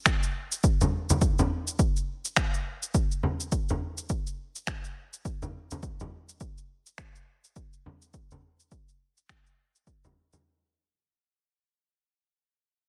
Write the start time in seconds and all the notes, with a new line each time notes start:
0.06 finger snap, kick, cabasa
0.23 cabasa
0.52 cabasa
0.63 kick, cabasa
0.81 frame drum, cabasa
1.10 frame drum, cabasa
1.21 kick, cabasa
1.39 frame drum, cabasa
1.67 cabasa
1.79 kick, cabasa
1.96 cabasa
2.25 cabasa
2.36 finger snap, kick, cabasa
2.54 cabasa
2.83 cabasa
2.94 kick, cabasa
3.12 cabasa
3.23 frame drum
3.40 cabasa
3.52 kick, cabasa
3.69 frame drum, cabasa
3.98 cabasa
4.09 kick, cabasa
4.27 cabasa
4.56 cabasa
4.67 finger snap, kick, cabasa
4.84 cabasa
5.13 cabasa
5.25 kick, cabasa
5.42 frame drum, cabasa
5.71 frame drum, cabasa
5.83 kick, cabasa
6.00 frame drum, cabasa
6.29 cabasa
6.40 kick, cabasa
6.58 cabasa
6.86 cabasa
6.98 finger snap, kick, cabasa
7.15 cabasa
7.44 cabasa
7.56 kick, cabasa
7.73 cabasa
7.86 frame drum
8.02 cabasa
8.14 kick, cabasa
8.31 frame drum, cabasa
8.60 cabasa
8.71 kick, cabasa
8.89 cabasa
9.17 cabasa
9.29 finger snap, kick, cabasa
9.46 cabasa
9.75 cabasa
9.87 kick, cabasa
10.04 frame drum, cabasa
10.33 frame drum, cabasa